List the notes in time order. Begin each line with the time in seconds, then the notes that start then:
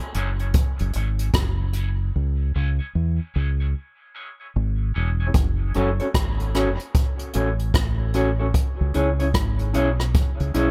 0.14 F#1 C#4 F#4 A4 C#5, closed hi-hat
0.39 C#4 F#4 A4 C#5, closed hi-hat
0.54 kick, closed hi-hat
0.79 F#1, closed hi-hat
0.93 G#1 C#4 F#4 A4 C#5, closed hi-hat
1.19 C#4 F#4 A4 C#5, closed hi-hat
1.34 F#1, kick, cross-stick, closed hi-hat
1.73 C#4 F#4 A4 C#5, closed hi-hat
2.16 C#2
2.54 C#2 C#4 E4 G#4 C#5
2.79 C#4 E4 G#4 C#5
2.95 E2
3.34 C#2 C#4 E4 G#4 C#5
3.60 C#4 E4 G#4 C#5
4.15 C#4 E4 G#4 C#5
4.40 C#4 E4 G#4 C#5
4.56 G#1
4.94 E1 C#4 E4 G#4 C#5
5.20 C#4 E4 G#4 C#5
5.34 F#1, kick, closed hi-hat
5.74 F#1 C#4 F#4 A4 C#5, closed hi-hat
5.99 C#4 F#4 A4 C#5, closed hi-hat
6.14 G#1, kick, cross-stick, closed hi-hat
6.40 closed hi-hat
6.54 C#4 F#4 A4 C#5, cross-stick, closed hi-hat
6.79 closed hi-hat
6.94 kick, closed hi-hat
7.19 closed hi-hat
7.33 A1 C#4 F#4 A4 C#5, closed hi-hat
7.59 closed hi-hat
7.74 A1, kick, cross-stick, closed hi-hat
8.14 C#4 F#4 A4 C#5, closed hi-hat
8.39 C#4 F#4 A4 C#5
8.54 kick, closed hi-hat
8.81 C#2
8.94 C#2 C#4 E4 G#4 C#5, closed hi-hat
9.20 C#4 E4 G#4 C#5, closed hi-hat
9.34 G#1, kick, cross-stick, closed hi-hat
9.59 closed hi-hat
9.74 B1 C#4 E4 G#4 C#5, closed hi-hat
10.00 cross-stick, closed hi-hat
10.14 kick, closed hi-hat
10.40 C#2, closed hi-hat
10.54 B1 C#4 E4 G#4 C#5, closed hi-hat